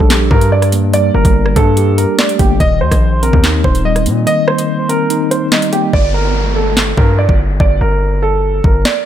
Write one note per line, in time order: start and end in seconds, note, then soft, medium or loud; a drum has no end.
0.00 0.30 A#1 loud
0.00 0.31 G3 loud
0.00 0.93 D4 medium
0.00 0.29 A4 medium
0.10 1.14 G4 loud
0.10 snare loud
0.10 clap loud
0.10 closed hi-hat medium
0.31 1.11 G2 loud
0.31 0.48 A#4 medium
0.31 kick loud
0.41 closed hi-hat medium
0.52 0.69 D5 medium
0.62 cross-stick medium
0.62 closed hi-hat medium
0.72 1.77 A#3 medium
0.72 closed hi-hat medium
0.93 1.98 G3 loud
0.93 1.10 D5 loud
0.93 closed hi-hat medium
1.14 1.24 G1 loud
1.14 1.54 A#4 medium
1.25 1.55 G1 loud
1.25 kick medium
1.25 closed hi-hat medium
1.46 cross-stick medium
1.56 2.06 G2 loud
1.56 2.60 D4 medium
1.56 1.95 A4 medium
1.56 kick loud
1.56 closed hi-hat medium
1.77 2.60 G4 loud
1.77 closed hi-hat medium
1.98 2.15 A#4 medium
1.98 closed hi-hat medium
2.19 2.60 A3 medium
2.19 2.35 D5 medium
2.19 snare loud
2.19 clap loud
2.29 closed hi-hat medium
2.39 2.59 G1 loud
2.39 2.60 A#3 medium
2.39 2.56 G4 medium
2.39 kick loud
2.39 closed hi-hat medium
2.60 2.83 D#1 loud
2.60 3.64 D#3 medium
2.60 2.77 D#5 loud
2.60 kick loud
2.60 closed hi-hat medium
2.81 2.91 D#2 loud
2.81 3.20 C5 medium
2.91 3.32 A#1 loud
2.91 kick medium
2.91 cross-stick medium
2.91 closed hi-hat medium
3.23 4.27 C4 medium
3.23 3.62 A#4 medium
3.23 closed hi-hat medium
3.33 3.63 D#2 loud
3.33 kick loud
3.44 4.48 D#4 loud
3.44 snare loud
3.44 clap loud
3.44 closed hi-hat medium
3.64 4.08 D#1 loud
3.64 3.81 C5 medium
3.64 kick loud
3.75 closed hi-hat medium
3.85 4.89 G3 medium
3.85 4.02 D#5 medium
3.96 cross-stick medium
3.96 closed hi-hat medium
4.06 4.26 A#2 loud
4.06 5.10 A#3 medium
4.06 closed hi-hat medium
4.27 5.31 D#3 medium
4.27 4.44 D#5 loud
4.27 closed hi-hat medium
4.48 4.87 C5 medium
4.48 cross-stick medium
4.58 closed hi-hat medium
4.89 5.93 C4 medium
4.89 5.28 A#4 medium
4.89 closed hi-hat medium
5.10 5.93 D#4 loud
5.10 closed hi-hat medium
5.31 5.48 C5 medium
5.31 closed hi-hat medium
5.52 5.93 G3 medium
5.52 5.69 D#5 medium
5.52 snare loud
5.52 clap loud
5.62 closed hi-hat medium
5.73 5.94 A#3 medium
5.73 5.89 G4 medium
5.73 closed hi-hat medium
5.93 6.94 G1 loud
5.93 6.10 D5 loud
5.93 kick loud
5.93 downlifter medium
6.14 6.53 A#4 medium
6.56 6.95 A4 medium
6.77 snare loud
6.77 clap loud
6.97 7.28 G2 loud
6.97 7.14 A#4 medium
6.97 kick loud
7.19 7.35 D5 medium
7.29 7.59 G1 loud
7.29 kick medium
7.60 7.80 G1 loud
7.60 7.77 D5 medium
7.60 kick loud
7.81 8.61 G1 loud
7.81 8.20 A#4 medium
8.23 8.62 A4 medium
8.64 8.84 G1 loud
8.64 8.81 A#4 medium
8.64 kick loud
8.85 9.02 D5 medium
8.85 snare loud
8.85 clap loud